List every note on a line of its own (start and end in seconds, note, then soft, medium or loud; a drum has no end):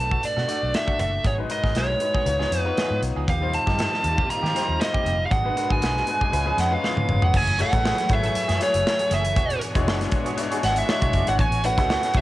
0.00 0.16 B1 medium
0.00 0.48 A3 medium
0.00 0.48 D4 medium
0.00 0.48 F#4 medium
0.00 1.26 A4 medium
0.00 1.27 B4 medium
0.00 0.26 A5 loud
0.11 0.22 A3 soft
0.11 0.22 D4 medium
0.11 0.22 F#4 medium
0.11 0.23 A4 medium
0.11 kick medium
0.23 0.76 D5 medium
0.23 muted clean electric guitar stroke soft
0.23 muted fingered electric bass stroke soft
0.23 closed hi-hat medium
0.37 0.45 B2 medium
0.37 0.47 A3 medium
0.37 0.48 D4 medium
0.37 0.48 F#4 medium
0.37 0.48 A4 medium
0.37 snare soft
0.48 1.24 A3 medium
0.48 0.65 A3 medium
0.48 1.24 D4 medium
0.48 0.62 D4 medium
0.48 1.24 F#4 medium
0.48 0.61 F#4 medium
0.48 0.61 A4 medium
0.48 1.24 D5 medium
0.48 closed hi-hat medium
0.62 0.71 B1 medium
0.62 muted clean electric guitar stroke soft
0.74 0.99 E5 medium
0.74 muted clean electric guitar stroke soft
0.74 snare loud
0.74 closed hi-hat medium
0.87 0.98 A3 medium
0.87 0.98 D4 medium
0.87 0.98 F#4 medium
0.87 0.99 A4 medium
0.87 kick medium
0.99 1.18 F#1 medium
0.99 1.16 A3 medium
0.99 1.12 D4 medium
0.99 1.12 F#4 medium
0.99 1.11 A4 medium
0.99 1.26 E5 medium
0.99 closed hi-hat medium
1.13 muted clean electric guitar stroke soft
1.24 1.43 G#1 loud
1.24 1.48 F#3 medium
1.24 1.48 B3 medium
1.24 1.48 D#4 medium
1.24 1.49 G#4 medium
1.24 1.33 C#5 medium
1.24 kick loud
1.24 closed hi-hat medium
1.38 1.48 G#3 medium
1.38 1.48 D#4 medium
1.38 1.49 F#4 medium
1.38 1.49 B4 medium
1.49 1.94 G#3 medium
1.49 1.94 D#4 medium
1.49 1.94 F#4 medium
1.49 1.94 A#4 medium
1.49 1.77 D#5 medium
1.49 muted clean electric guitar stroke soft
1.49 closed hi-hat medium
1.63 1.72 G#1 medium
1.63 1.74 F#3 soft
1.63 1.74 B3 soft
1.63 1.75 D#4 medium
1.63 1.75 G#4 medium
1.63 kick medium
1.63 snare soft
1.75 1.94 B1 loud
1.75 1.96 F#3 medium
1.75 1.89 B3 medium
1.75 1.88 D#4 medium
1.75 1.88 G#4 medium
1.75 2.60 C#5 medium
1.75 snare medium
1.75 closed hi-hat medium
1.89 muted clean electric guitar stroke medium
2.00 2.23 G#3 medium
2.00 2.23 D#4 medium
2.00 2.23 F#4 medium
2.00 2.23 B4 medium
2.00 muted clean electric guitar stroke soft
2.00 closed hi-hat medium
2.14 2.25 F#3 soft
2.14 2.25 B3 medium
2.14 2.25 D#4 medium
2.14 2.26 G#4 medium
2.14 kick medium
2.25 2.44 C#2 loud
2.25 2.38 B3 medium
2.25 2.38 D#4 medium
2.25 2.38 F4 medium
2.25 2.38 C#5 medium
2.25 closed hi-hat medium
2.39 2.50 F3 medium
2.39 2.61 B3 medium
2.39 2.51 B3 medium
2.39 2.61 D#4 medium
2.39 2.51 D#4 medium
2.39 2.61 F4 medium
2.39 2.51 G#4 medium
2.39 2.62 C#5 loud
2.39 snare soft
2.51 2.70 F2 medium
2.51 2.68 F3 medium
2.51 2.65 B3 medium
2.51 2.64 D#4 medium
2.51 2.64 G#4 medium
2.51 closed hi-hat medium
2.60 2.99 B4 medium
2.65 3.28 B3 loud
2.65 3.28 D#4 medium
2.65 3.28 F4 medium
2.65 3.28 C#5 loud
2.77 2.98 F3 medium
2.77 2.91 B3 medium
2.77 2.90 D#4 medium
2.77 2.89 G#4 medium
2.77 snare loud
2.77 closed hi-hat medium
2.90 2.99 G#2 medium
2.90 muted clean electric guitar stroke soft
3.02 3.12 B1 loud
3.02 muted clean electric guitar stroke soft
3.02 closed hi-hat medium
3.16 3.24 C#2 medium
3.16 3.26 F3 medium
3.16 3.28 B3 medium
3.16 3.28 D#4 medium
3.16 3.28 G#4 medium
3.27 3.56 D#2 loud
3.27 5.29 D#3 medium
3.27 3.51 F3 medium
3.27 5.29 A#3 medium
3.27 3.52 A#3 medium
3.27 5.29 C4 medium
3.27 3.52 C4 medium
3.27 5.29 F4 medium
3.27 5.29 G4 medium
3.27 3.52 G4 medium
3.27 3.52 F5 medium
3.27 kick loud
3.27 closed hi-hat medium
3.41 3.63 G3 medium
3.41 3.63 D#4 medium
3.41 3.63 F4 medium
3.41 3.63 C5 medium
3.53 4.30 A5 loud
3.53 closed hi-hat medium
3.66 3.86 G2 medium
3.66 3.77 F3 soft
3.66 4.42 G3 medium
3.66 3.77 A#3 soft
3.66 3.78 C4 medium
3.66 4.42 D#4 medium
3.66 4.43 F4 medium
3.66 3.79 G4 medium
3.66 4.43 D#5 medium
3.66 kick medium
3.66 snare soft
3.78 3.99 F3 medium
3.78 3.92 A#3 medium
3.78 3.91 C4 medium
3.78 3.92 A4 medium
3.78 snare loud
3.78 closed hi-hat medium
3.92 muted clean electric guitar stroke soft
3.92 snare soft
4.04 4.22 D#2 medium
4.04 muted clean electric guitar stroke soft
4.04 closed hi-hat medium
4.18 4.28 F3 soft
4.18 4.29 A#3 medium
4.18 4.29 C4 medium
4.18 4.29 G4 medium
4.18 kick loud
4.29 4.82 A#5 medium
4.29 muted clean electric guitar stroke soft
4.29 muted fingered electric bass stroke soft
4.29 closed hi-hat medium
4.43 4.52 D#3 medium
4.43 4.53 F3 medium
4.43 4.54 A#3 medium
4.43 4.54 C4 medium
4.43 4.55 G4 medium
4.43 snare soft
4.54 4.72 F3 medium
4.54 5.30 G3 medium
4.54 4.68 A#3 medium
4.54 4.68 C4 medium
4.54 5.30 D#4 medium
4.54 5.30 F4 medium
4.54 4.67 G4 medium
4.54 5.31 C5 medium
4.54 snare soft
4.54 closed hi-hat medium
4.68 4.77 D#2 medium
4.68 muted clean electric guitar stroke soft
4.80 5.26 D#5 medium
4.80 muted clean electric guitar stroke soft
4.80 snare loud
4.80 closed hi-hat medium
4.94 5.04 F3 medium
4.94 5.05 A#3 medium
4.94 5.05 C4 medium
4.94 5.06 G4 medium
4.94 kick medium
5.05 5.24 F1 loud
5.05 5.22 F3 medium
5.05 5.19 A#3 medium
5.05 5.18 C4 medium
5.05 5.18 G4 medium
5.05 closed hi-hat medium
5.19 muted clean electric guitar stroke soft
5.26 5.32 F5 medium
5.30 5.50 G#1 loud
5.30 5.54 F#3 medium
5.30 7.32 G#3 medium
5.30 5.54 B3 medium
5.30 6.32 B3 medium
5.30 5.55 D4 medium
5.30 6.32 F#4 medium
5.30 5.55 G#4 medium
5.30 5.72 F#5 loud
5.30 kick loud
5.30 closed hi-hat medium
5.44 5.54 G#3 medium
5.44 5.55 D4 medium
5.44 5.55 F#4 medium
5.44 5.55 B4 medium
5.56 6.00 G#3 medium
5.56 6.00 D4 medium
5.56 6.00 F#4 medium
5.56 5.63 A#4 medium
5.56 muted clean electric guitar stroke soft
5.56 closed hi-hat medium
5.63 6.04 B4 medium
5.70 5.79 G#1 loud
5.70 5.80 F#3 soft
5.70 5.81 B3 medium
5.70 5.81 D4 medium
5.70 5.81 G#4 medium
5.70 6.68 G#5 medium
5.70 kick medium
5.81 6.00 B1 loud
5.81 6.02 F#3 medium
5.81 5.95 B3 medium
5.81 5.95 D4 medium
5.81 5.94 G#4 medium
5.81 snare loud
5.81 closed hi-hat medium
5.95 muted clean electric guitar stroke soft
5.95 snare soft
6.07 6.29 G#3 medium
6.07 6.29 D4 medium
6.07 6.29 F#4 medium
6.07 6.29 B4 medium
6.07 muted clean electric guitar stroke soft
6.07 closed hi-hat medium
6.21 6.32 F#3 medium
6.21 6.32 B3 medium
6.21 6.33 D4 medium
6.21 6.32 G#4 medium
6.21 kick medium
6.32 6.51 C#2 loud
6.32 7.33 C#3 medium
6.32 6.44 G#3 loud
6.32 7.33 B3 medium
6.32 6.44 C#4 medium
6.32 7.33 D#4 medium
6.32 7.33 F4 medium
6.32 6.44 F4 medium
6.32 6.45 B4 loud
6.32 muted clean electric guitar stroke soft
6.32 closed hi-hat medium
6.46 6.56 F3 medium
6.46 6.67 G#3 medium
6.46 6.57 B3 medium
6.46 6.67 C#4 medium
6.46 6.57 C#4 medium
6.46 6.68 F4 medium
6.46 6.58 G#4 medium
6.46 6.68 B4 loud
6.58 6.76 F2 medium
6.58 6.75 F3 medium
6.58 6.71 B3 medium
6.58 6.71 C#4 medium
6.58 6.70 G#4 medium
6.58 6.74 F#5 loud
6.58 snare soft
6.58 closed hi-hat medium
6.71 7.34 G#3 loud
6.71 7.34 C#4 medium
6.71 7.34 F4 loud
6.71 7.34 B4 loud
6.71 6.84 F5 medium
6.71 muted clean electric guitar stroke soft
6.83 7.04 F3 medium
6.83 6.96 B3 medium
6.83 6.96 C#4 medium
6.83 6.95 G#4 medium
6.83 7.24 F5 loud
6.83 snare medium
6.97 7.05 G#2 medium
6.97 muted clean electric guitar stroke soft
6.97 high tom medium
7.09 7.19 F#1 loud
7.09 muted clean electric guitar stroke soft
7.09 mid tom medium
7.22 7.31 F1 medium
7.22 7.33 F3 medium
7.22 7.34 B3 medium
7.22 7.33 C#4 medium
7.22 7.34 G#4 medium
7.22 7.36 F#5 medium
7.22 floor tom medium
7.34 7.62 F#1 loud
7.34 7.57 E3 medium
7.34 9.35 F#3 medium
7.34 7.57 A3 medium
7.34 9.35 A3 medium
7.34 7.58 C#4 medium
7.34 9.35 E4 medium
7.34 11.35 G#4 medium
7.34 7.58 G#4 medium
7.34 12.21 C#5 medium
7.34 7.60 G#5 loud
7.34 kick loud
7.34 crash loud
7.47 closed hi-hat medium
7.59 7.71 A3 medium
7.59 7.71 E4 medium
7.59 7.71 F#4 medium
7.59 7.71 G#4 medium
7.59 7.71 C#5 medium
7.59 8.13 F#5 loud
7.59 muted clean electric guitar stroke soft
7.59 closed hi-hat medium
7.72 7.91 A1 medium
7.72 7.83 E3 medium
7.72 8.04 A3 medium
7.72 7.83 A3 medium
7.72 7.84 C#4 medium
7.72 8.05 E4 medium
7.72 8.05 F#4 medium
7.72 8.05 G#4 medium
7.72 7.85 A4 medium
7.72 8.05 B4 medium
7.72 kick medium
7.72 closed hi-hat medium
7.84 8.05 E3 medium
7.84 7.97 A3 medium
7.84 7.97 C#4 medium
7.84 7.96 G#4 medium
7.84 snare loud
7.97 muted clean electric guitar stroke soft
7.97 snare soft
7.97 closed hi-hat medium
8.09 8.28 G#1 medium
8.09 8.53 A3 medium
8.09 8.53 E4 medium
8.09 8.54 F#4 medium
8.09 8.54 G#4 medium
8.09 8.54 C#5 medium
8.09 8.59 E5 medium
8.09 muted clean electric guitar stroke soft
8.09 kick medium
8.09 closed hi-hat medium
8.23 8.34 E3 medium
8.23 8.34 A3 medium
8.23 8.34 C#4 medium
8.23 8.35 A4 medium
8.23 closed hi-hat soft
8.35 muted clean electric guitar stroke soft
8.35 muted fingered electric bass stroke soft
8.35 closed hi-hat medium
8.48 8.57 F#2 medium
8.48 8.59 E3 medium
8.48 8.59 A3 medium
8.48 8.59 C#4 medium
8.48 8.60 G#4 medium
8.48 snare soft
8.48 closed hi-hat medium
8.60 9.36 A3 medium
8.60 9.36 E4 medium
8.60 9.36 F#4 medium
8.60 9.37 G#4 medium
8.60 9.37 C#5 medium
8.60 9.14 C#5 medium
8.60 muted clean electric guitar stroke soft
8.60 snare soft
8.60 closed hi-hat medium
8.74 8.83 F#1 medium
8.74 muted clean electric guitar stroke soft
8.74 closed hi-hat medium
8.87 snare loud
8.99 muted clean electric guitar stroke medium
8.99 closed hi-hat medium
9.10 9.36 F#1 medium
9.10 9.31 E3 medium
9.10 9.24 A3 medium
9.10 9.24 C#4 medium
9.10 9.23 G#4 medium
9.10 9.60 E5 medium
9.10 closed hi-hat medium
9.24 muted clean electric guitar stroke soft
9.24 closed hi-hat medium
9.36 9.55 E1 loud
9.36 11.37 E3 medium
9.36 11.37 B3 medium
9.36 9.60 D4 medium
9.36 11.37 D4 medium
9.36 9.60 F#4 medium
9.36 12.21 F#4 medium
9.36 9.60 G#4 medium
9.36 9.60 C#5 medium
9.36 kick loud
9.36 closed hi-hat medium
9.50 closed hi-hat medium
9.61 muted clean electric guitar stroke soft
9.61 closed hi-hat medium
9.75 9.87 E1 loud
9.75 10.29 G#3 medium
9.75 10.29 D4 medium
9.75 9.85 D4 soft
9.75 10.29 E4 medium
9.75 10.29 F#4 medium
9.75 9.86 F#4 medium
9.75 9.87 G#4 medium
9.75 9.87 C#5 medium
9.75 10.29 C#5 loud
9.75 kick medium
9.75 closed hi-hat medium
9.87 10.06 F#1 loud
9.87 10.08 D4 medium
9.87 10.00 F#4 medium
9.87 10.00 G#4 medium
9.87 9.99 C#5 loud
9.87 snare loud
10.01 muted clean electric guitar stroke soft
10.01 snare soft
10.01 closed hi-hat medium
10.12 muted clean electric guitar stroke soft
10.12 kick medium
10.12 closed hi-hat medium
10.26 10.37 D4 medium
10.26 10.37 F#4 medium
10.26 10.37 G#4 medium
10.26 10.38 C#5 medium
10.26 closed hi-hat soft
10.37 10.49 G#3 medium
10.37 10.49 D4 medium
10.37 10.49 E4 medium
10.37 10.50 F#4 medium
10.37 10.50 C#5 loud
10.37 muted clean electric guitar stroke soft
10.37 closed hi-hat medium
10.51 10.83 G#3 medium
10.51 10.83 D4 medium
10.51 10.62 D4 medium
10.51 10.83 E4 medium
10.51 10.84 F#4 medium
10.51 10.62 F#4 medium
10.51 10.62 G#4 medium
10.51 10.84 G#4 medium
10.51 10.63 C#5 medium
10.51 closed hi-hat medium
10.63 10.81 G#1 loud
10.63 10.78 F#5 loud
10.63 muted clean electric guitar stroke soft
10.63 snare soft
10.63 closed hi-hat medium
10.76 10.89 E5 medium
10.76 muted clean electric guitar stroke soft
10.76 closed hi-hat medium
10.88 11.21 G#3 medium
10.88 11.21 D4 medium
10.88 11.21 E4 medium
10.88 11.21 F#4 medium
10.88 11.22 C#5 loud
10.88 11.29 E5 medium
10.88 muted clean electric guitar stroke soft
10.88 snare loud
11.02 11.11 B1 medium
11.02 11.12 D4 medium
11.02 11.13 F#4 medium
11.02 11.13 G#4 medium
11.02 11.14 C#5 medium
11.02 kick loud
11.02 closed hi-hat medium
11.13 11.24 F#1 loud
11.13 11.30 D4 medium
11.13 11.27 F#4 medium
11.13 11.27 G#4 medium
11.13 11.27 D5 medium
11.13 kick medium
11.13 closed hi-hat medium
11.27 11.36 G#1 medium
11.27 11.39 G#3 medium
11.27 11.39 D4 medium
11.27 11.39 E4 medium
11.27 11.39 F#4 medium
11.27 11.40 C#5 medium
11.27 11.34 F#5 loud
11.27 closed hi-hat medium
11.39 11.78 A1 loud
11.39 12.21 A3 medium
11.39 11.62 B3 medium
11.39 11.63 E4 medium
11.39 11.63 F#4 medium
11.39 11.63 C#5 medium
11.39 11.65 G#5 loud
11.39 kick loud
11.39 closed hi-hat medium
11.52 closed hi-hat medium
11.64 11.76 A3 medium
11.64 11.76 C#4 medium
11.64 11.76 E4 medium
11.64 11.76 F#4 medium
11.64 11.77 B4 medium
11.64 12.17 F#5 loud
11.64 muted clean electric guitar stroke soft
11.64 closed hi-hat medium
11.78 11.96 C#2 medium
11.78 12.10 A3 medium
11.78 11.88 B3 medium
11.78 12.10 C#4 medium
11.78 12.10 E4 medium
11.78 11.88 E4 medium
11.78 11.89 F#4 medium
11.78 12.10 F#4 medium
11.78 12.10 G#4 medium
11.78 11.90 E5 medium
11.78 kick medium
11.78 snare soft
11.78 closed hi-hat medium
11.89 12.10 B3 medium
11.89 12.03 E4 medium
11.89 12.02 F#4 medium
11.89 12.02 C#5 medium
11.89 snare loud
12.03 muted clean electric guitar stroke soft
12.03 snare soft
12.03 closed hi-hat medium
12.14 12.21 B1 medium
12.14 12.21 A3 medium
12.14 12.21 C#4 medium
12.14 12.21 E4 medium
12.14 12.21 F#4 medium
12.14 12.21 A4 medium
12.14 12.21 E5 loud
12.14 muted clean electric guitar stroke soft
12.14 kick medium
12.14 closed hi-hat medium